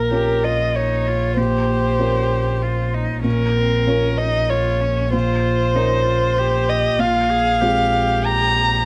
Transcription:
0, 0, Header, 1, 5, 480
1, 0, Start_track
1, 0, Tempo, 626305
1, 1052, Time_signature, 3, 2, 24, 8
1, 6783, End_track
2, 0, Start_track
2, 0, Title_t, "Violin"
2, 0, Program_c, 0, 40
2, 0, Note_on_c, 0, 70, 53
2, 337, Note_on_c, 0, 75, 55
2, 349, Note_off_c, 0, 70, 0
2, 583, Note_on_c, 0, 73, 48
2, 594, Note_off_c, 0, 75, 0
2, 1054, Note_off_c, 0, 73, 0
2, 1058, Note_on_c, 0, 72, 61
2, 2229, Note_off_c, 0, 72, 0
2, 2491, Note_on_c, 0, 70, 62
2, 3203, Note_on_c, 0, 75, 66
2, 3215, Note_off_c, 0, 70, 0
2, 3449, Note_on_c, 0, 73, 52
2, 3461, Note_off_c, 0, 75, 0
2, 3931, Note_off_c, 0, 73, 0
2, 3935, Note_on_c, 0, 72, 78
2, 5128, Note_on_c, 0, 75, 68
2, 5139, Note_off_c, 0, 72, 0
2, 5367, Note_on_c, 0, 77, 75
2, 5379, Note_off_c, 0, 75, 0
2, 6329, Note_on_c, 0, 82, 84
2, 6340, Note_off_c, 0, 77, 0
2, 6783, Note_off_c, 0, 82, 0
2, 6783, End_track
3, 0, Start_track
3, 0, Title_t, "Cello"
3, 0, Program_c, 1, 42
3, 82, Note_on_c, 1, 67, 43
3, 333, Note_on_c, 1, 65, 35
3, 344, Note_off_c, 1, 67, 0
3, 578, Note_on_c, 1, 63, 39
3, 590, Note_off_c, 1, 65, 0
3, 823, Note_on_c, 1, 65, 41
3, 835, Note_off_c, 1, 63, 0
3, 1056, Note_on_c, 1, 67, 51
3, 1067, Note_off_c, 1, 65, 0
3, 2010, Note_on_c, 1, 65, 43
3, 2021, Note_off_c, 1, 67, 0
3, 2253, Note_on_c, 1, 63, 46
3, 2265, Note_off_c, 1, 65, 0
3, 2475, Note_off_c, 1, 63, 0
3, 2480, Note_on_c, 1, 61, 42
3, 2721, Note_off_c, 1, 61, 0
3, 2737, Note_on_c, 1, 60, 40
3, 2978, Note_on_c, 1, 61, 41
3, 2990, Note_off_c, 1, 60, 0
3, 3209, Note_on_c, 1, 63, 43
3, 3221, Note_off_c, 1, 61, 0
3, 3443, Note_on_c, 1, 65, 51
3, 3454, Note_off_c, 1, 63, 0
3, 3683, Note_on_c, 1, 61, 45
3, 3694, Note_off_c, 1, 65, 0
3, 3924, Note_off_c, 1, 61, 0
3, 3929, Note_on_c, 1, 65, 55
3, 4413, Note_on_c, 1, 63, 47
3, 4424, Note_off_c, 1, 65, 0
3, 4644, Note_off_c, 1, 63, 0
3, 4649, Note_on_c, 1, 65, 52
3, 4889, Note_on_c, 1, 67, 61
3, 4901, Note_off_c, 1, 65, 0
3, 5355, Note_on_c, 1, 65, 59
3, 5366, Note_off_c, 1, 67, 0
3, 5599, Note_on_c, 1, 68, 60
3, 5610, Note_off_c, 1, 65, 0
3, 5831, Note_on_c, 1, 67, 62
3, 5843, Note_off_c, 1, 68, 0
3, 6783, Note_off_c, 1, 67, 0
3, 6783, End_track
4, 0, Start_track
4, 0, Title_t, "Upright piano"
4, 0, Program_c, 2, 0
4, 0, Control_c, 2, 64, 127
4, 0, Note_on_c, 2, 46, 37
4, 85, Note_on_c, 2, 61, 27
4, 88, Note_on_c, 2, 70, 31
4, 90, Note_on_c, 2, 65, 29
4, 1020, Note_off_c, 2, 61, 0
4, 1022, Note_off_c, 2, 70, 0
4, 1023, Note_off_c, 2, 65, 0
4, 1049, Note_off_c, 2, 46, 0
4, 1049, Note_on_c, 2, 46, 42
4, 1064, Control_c, 2, 64, 0
4, 1184, Control_c, 2, 64, 127
4, 1513, Note_off_c, 2, 46, 0
4, 1527, Note_on_c, 2, 61, 31
4, 1527, Note_on_c, 2, 65, 29
4, 1530, Note_on_c, 2, 70, 33
4, 2458, Note_off_c, 2, 61, 0
4, 2459, Note_off_c, 2, 65, 0
4, 2460, Note_off_c, 2, 70, 0
4, 2484, Note_on_c, 2, 46, 38
4, 2504, Control_c, 2, 64, 0
4, 2621, Control_c, 2, 64, 127
4, 2954, Note_off_c, 2, 46, 0
4, 2967, Note_on_c, 2, 61, 31
4, 2967, Note_on_c, 2, 65, 32
4, 2974, Note_on_c, 2, 70, 38
4, 3899, Note_off_c, 2, 61, 0
4, 3899, Note_off_c, 2, 65, 0
4, 3902, Note_off_c, 2, 70, 0
4, 3932, Note_on_c, 2, 46, 46
4, 3947, Control_c, 2, 64, 0
4, 4065, Control_c, 2, 64, 127
4, 4395, Note_off_c, 2, 46, 0
4, 4406, Note_on_c, 2, 61, 37
4, 4407, Note_on_c, 2, 65, 35
4, 4413, Note_on_c, 2, 70, 41
4, 5328, Note_off_c, 2, 61, 0
4, 5329, Note_off_c, 2, 65, 0
4, 5332, Note_off_c, 2, 70, 0
4, 5357, Note_on_c, 2, 46, 46
4, 5375, Control_c, 2, 64, 0
4, 5495, Control_c, 2, 64, 127
4, 5821, Note_off_c, 2, 46, 0
4, 5838, Note_on_c, 2, 60, 41
4, 5839, Note_on_c, 2, 56, 42
4, 5841, Note_on_c, 2, 65, 42
4, 6775, Note_off_c, 2, 56, 0
4, 6775, Note_off_c, 2, 60, 0
4, 6776, Note_off_c, 2, 65, 0
4, 6783, End_track
5, 0, Start_track
5, 0, Title_t, "Double bass"
5, 0, Program_c, 3, 43
5, 0, Note_on_c, 3, 34, 40
5, 2459, Note_off_c, 3, 34, 0
5, 2489, Note_on_c, 3, 34, 42
5, 5329, Note_off_c, 3, 34, 0
5, 5358, Note_on_c, 3, 34, 55
5, 6783, Note_off_c, 3, 34, 0
5, 6783, End_track
0, 0, End_of_file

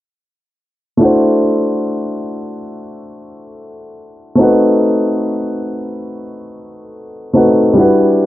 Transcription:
0, 0, Header, 1, 2, 480
1, 0, Start_track
1, 0, Tempo, 845070
1, 571, Time_signature, 4, 2, 24, 8
1, 4692, End_track
2, 0, Start_track
2, 0, Title_t, "Grand piano"
2, 0, Program_c, 0, 0
2, 553, Note_on_c, 0, 57, 67
2, 564, Note_on_c, 0, 62, 60
2, 573, Note_on_c, 0, 64, 61
2, 584, Note_on_c, 0, 66, 60
2, 595, Note_on_c, 0, 72, 76
2, 675, Control_c, 0, 64, 127
2, 2459, Note_off_c, 0, 57, 0
2, 2465, Note_off_c, 0, 62, 0
2, 2469, Note_off_c, 0, 64, 0
2, 2473, Note_on_c, 0, 57, 68
2, 2475, Note_off_c, 0, 66, 0
2, 2480, Note_off_c, 0, 72, 0
2, 2483, Note_on_c, 0, 60, 63
2, 2494, Note_on_c, 0, 63, 63
2, 2498, Control_c, 0, 64, 0
2, 2504, Note_on_c, 0, 66, 59
2, 2516, Note_on_c, 0, 71, 75
2, 2597, Control_c, 0, 64, 127
2, 4139, Note_off_c, 0, 57, 0
2, 4144, Note_off_c, 0, 60, 0
2, 4150, Note_off_c, 0, 63, 0
2, 4155, Note_off_c, 0, 66, 0
2, 4160, Note_off_c, 0, 71, 0
2, 4166, Note_on_c, 0, 57, 55
2, 4170, Note_on_c, 0, 60, 48
2, 4176, Note_on_c, 0, 63, 49
2, 4182, Note_on_c, 0, 66, 51
2, 4186, Note_on_c, 0, 71, 58
2, 4393, Note_on_c, 0, 55, 66
2, 4403, Note_on_c, 0, 62, 64
2, 4408, Note_off_c, 0, 57, 0
2, 4411, Note_off_c, 0, 60, 0
2, 4413, Note_off_c, 0, 63, 0
2, 4414, Note_on_c, 0, 64, 64
2, 4416, Note_off_c, 0, 66, 0
2, 4418, Note_off_c, 0, 71, 0
2, 4419, Control_c, 0, 64, 0
2, 4425, Note_on_c, 0, 66, 62
2, 4436, Note_on_c, 0, 71, 78
2, 4524, Control_c, 0, 64, 127
2, 4692, Note_off_c, 0, 55, 0
2, 4692, Note_off_c, 0, 62, 0
2, 4692, Note_off_c, 0, 64, 0
2, 4692, Note_off_c, 0, 66, 0
2, 4692, Note_off_c, 0, 71, 0
2, 4692, End_track
0, 0, End_of_file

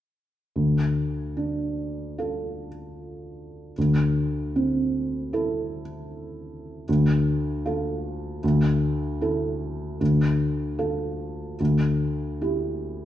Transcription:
0, 0, Header, 1, 2, 480
1, 0, Start_track
1, 0, Key_signature, -1, "minor"
1, 0, Tempo, 813008
1, 323, Time_signature, 4, 2, 24, 8
1, 1759, Tempo, 781250
1, 6559, Tempo, 819672
1, 7881, End_track
2, 0, Start_track
2, 0, Title_t, "Felt piano"
2, 0, Program_c, 0, 0
2, 328, Note_on_c, 0, 38, 37
2, 448, Control_c, 0, 64, 127
2, 807, Note_on_c, 0, 62, 30
2, 1289, Note_on_c, 0, 65, 31
2, 1296, Note_on_c, 0, 69, 32
2, 1572, Note_off_c, 0, 62, 0
2, 2219, Note_off_c, 0, 38, 0
2, 2220, Note_off_c, 0, 65, 0
2, 2223, Note_off_c, 0, 69, 0
2, 2251, Control_c, 0, 64, 0
2, 2251, Note_on_c, 0, 38, 41
2, 2337, Control_c, 0, 64, 127
2, 2729, Note_on_c, 0, 60, 37
2, 3204, Note_on_c, 0, 64, 35
2, 3208, Note_on_c, 0, 69, 40
2, 3488, Note_off_c, 0, 60, 0
2, 4131, Note_off_c, 0, 64, 0
2, 4133, Note_off_c, 0, 38, 0
2, 4133, Note_off_c, 0, 69, 0
2, 4160, Note_on_c, 0, 38, 51
2, 4163, Control_c, 0, 64, 0
2, 4255, Control_c, 0, 64, 127
2, 4632, Note_on_c, 0, 65, 40
2, 4640, Note_on_c, 0, 69, 41
2, 5084, Note_off_c, 0, 65, 0
2, 5086, Note_off_c, 0, 38, 0
2, 5088, Note_off_c, 0, 69, 0
2, 5112, Note_on_c, 0, 38, 49
2, 5117, Control_c, 0, 64, 0
2, 5207, Control_c, 0, 64, 127
2, 5589, Note_on_c, 0, 64, 35
2, 5594, Note_on_c, 0, 69, 42
2, 6047, Note_off_c, 0, 64, 0
2, 6049, Note_off_c, 0, 69, 0
2, 6051, Note_off_c, 0, 38, 0
2, 6075, Note_on_c, 0, 38, 45
2, 6085, Control_c, 0, 64, 0
2, 6190, Control_c, 0, 64, 127
2, 6556, Note_on_c, 0, 65, 39
2, 6557, Note_on_c, 0, 69, 40
2, 7004, Note_off_c, 0, 65, 0
2, 7004, Note_off_c, 0, 69, 0
2, 7006, Note_off_c, 0, 38, 0
2, 7033, Note_on_c, 0, 38, 44
2, 7040, Control_c, 0, 64, 0
2, 7126, Control_c, 0, 64, 127
2, 7509, Note_on_c, 0, 64, 32
2, 7511, Note_on_c, 0, 67, 32
2, 7881, Note_off_c, 0, 38, 0
2, 7881, Note_off_c, 0, 64, 0
2, 7881, Note_off_c, 0, 67, 0
2, 7881, End_track
0, 0, End_of_file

